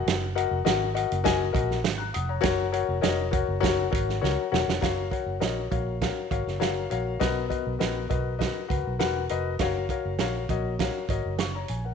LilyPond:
<<
  \new Staff \with { instrumentName = "Grand piano" } { \time 4/4 \key fis \major \tempo 4 = 100 << { r2. r16 <ais'' fis'''>16 <fis'' dis'''>16 <cis'' ais''>16~ | <cis'' ais''>16 r2. r8. | r1 | b4. r2 r8 |
r2. <eis'' cis'''>16 <cis'' ais''>16 gis''16 <ais' fis''>16 | } \\ { <fis' ais' dis'' fis''>8 <fis' ais' dis'' fis''>8 <fis' ais' dis'' fis''>8 <fis' ais' dis'' fis''>8 <fis' ais' dis'' gis''>8 <fis' ais' dis'' fis''>8 r4 | <fis' ais' cis'' fis''>8 <fis' ais' cis'' fis''>8 <fis' ais' cis'' dis''>8 <fis' ais' cis'' fis''>8 <fis' ais' cis'' fis''>8 <fis' ais' cis'' fis''>8 <fis' ais' cis'' fis''>8 <fis' ais' cis'' fis''>8 | <fis' ais' cis'' eis''>8 <fis' ais' cis'' fis''>8 <fis' ais' cis'' dis''>8 <fis' ais' cis'' eis''>8 <fis' ais' cis'' eis''>8 <fis' ais' cis'' eis''>8 <fis' ais' cis'' eis''>8 <fis' ais' cis'' eis''>8 | <fis' ais' b' dis''>8 <fis' ais' b' dis''>8 <fis' ais' b' dis''>8 <fis' ais' b' dis''>8 <fis' ais' b' dis''>8 <fis' ais' b' fis''>8 <fis' ais' b' fis''>8 <fis' ais' b' dis''>8 |
<fis' ais' cis'' eis''>8 <fis' ais' cis'' eis''>8 <fis' ais' cis'' eis''>8 <fis' ais' cis'' dis''>8 <fis' ais' cis'' eis''>8 <fis' ais' cis'' dis''>8 r4 | } >> }
  \new Staff \with { instrumentName = "Fingered electric bass" } { \clef bass \time 4/4 \key fis \major fis,,8. eis,,16 gis,,8. fis,,8. ais,,8 gis,,8 eis,,8 | fis,,8. eis,,16 eis,,8. fis,,8. gis,,8 cis,16 r16 e,,16 eis,,16 | fis,,8 r16 fis,,16 ais,,8 ais,,8. r16 gis,,16 fis,,8. ais,,8 | b,,8 r16 b,,16 ais,,8 b,,8. r16 cis,16 b,,16 e,,8 eis,,8 |
fis,,8 r16 fis,,16 ais,,8 ais,,8. r16 gis,,16 fis,,8. ais,,8 | }
  \new DrumStaff \with { instrumentName = "Drums" } \drummode { \time 4/4 <hh sn>8 hh8 <hh sn>8 hh16 hh16 <hh bd sn>8 <hh bd>16 sn16 <hh sn>8 hh8 | <hh bd sn>8 hh8 <hh sn>8 <hh bd>8 <hh bd sn>8 <hh bd>16 sn16 sn8 sn16 sn16 | <hh bd sn>8 <hh bd>8 <hh sn>8 <hh bd>8 <hh bd sn>8 <hh bd>16 sn16 <hh sn>8 hh8 | <hh bd sn>8 <hh bd>8 <hh sn>8 <hh bd>8 <hh bd sn>8 <hh bd>8 <hh sn>8 hh8 |
<hh bd sn>8 <hh bd>8 <hh sn>8 <hh bd>8 <hh bd sn>8 <hh bd>8 <hh sn>8 hh8 | }
>>